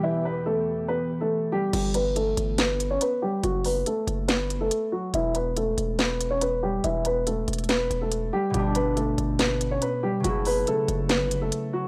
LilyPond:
<<
  \new Staff \with { instrumentName = "Grand piano" } { \time 4/4 \key e \dorian \tempo 4 = 141 <e e'>8 <b b'>8 <a a'>4 <b b'>8. <a a'>8. <g g'>8 | <g g'>8 <b b'>8 <a a'>4 <b b'>8. <cis' cis''>16 <b b'>8 <g g'>8 | <fis fis'>8 <b b'>8 <a a'>4 <b b'>8. <a a'>8. <fis fis'>8 | <e e'>8 <b b'>8 <a a'>4 <b b'>8. <cis' cis''>16 <b b'>8 <g g'>8 |
<e e'>8 <b b'>8 <a a'>4 <b b'>8. <a a'>8. <g g'>8 | <g g'>8 <b b'>8 <a a'>4 <b b'>8. <cis' cis''>16 <b b'>8 <g g'>8 | <fis fis'>8 <b b'>8 <a a'>4 <b b'>8. <a a'>8. <fis fis'>8 | }
  \new Staff \with { instrumentName = "Ambient pad" } { \clef bass \time 4/4 \key e \dorian <e, e b g'>1 | r1 | r1 | r1 |
r1 | r1 | r1 | }
  \new Staff \with { instrumentName = "Harp" } { \clef bass \time 4/4 \key e \dorian <b, e g e'>1 | r1 | r1 | r1 |
r1 | <b, g a d'>1 | <cis fis a e'>1 | }
  \new Staff \with { instrumentName = "808-style bass" } { \clef bass \time 4/4 \key e \dorian r1 | g,,4. g,,4. r4 | fis,,4 r8 fis,,8. g,,16. fis,,16. r4 | e,,4. e,,2~ e,,8 |
e,,4. e,,4 e,,4 r8 | g,,4. g,,4. r4 | fis,,4 r8 fis,,8. g,,16. fis,,16. r4 | }
  \new DrumStaff \with { instrumentName = "Drums" } \drummode { \time 4/4 r4 r4 r4 r4 | <cymc hh>8 hh8 hh8 hh8 <hh sn>8 hh8 hh4 | hh8 hho8 hh8 hh8 <hh sn>8 hh8 hh4 | hh8 hh8 hh8 hh8 <hh sn>8 hh8 hh4 |
hh8 hh8 hh8 hh32 hh32 hh32 hh32 <hh sn>8 hh8 hh4 | hh8 hh8 hh8 hh8 <hh sn>8 hh8 hh4 | hh8 hho8 hh8 hh8 <hh sn>8 hh8 hh4 | }
>>